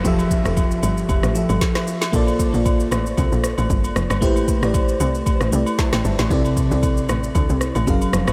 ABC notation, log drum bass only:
X:1
M:4/4
L:1/16
Q:"Swing 16ths" 1/4=115
K:Cmix
V:1 name="Log drum bass" clef=bass
F,,,3 F,,,3 G,,,2 F,,, A,,,2 G,,, z4 | B,,,3 B,,,3 A,,,2 C,, B,,,2 A,,, G,,,2 F,,, G,,, | A,,,3 A,,,3 C,,2 z A,,, C,, z2 A,,, G,,, A,,, | C,,3 C,,3 A,,,2 D,, C,,2 A,,, ^F,,,2 ^E,,, F,,, |]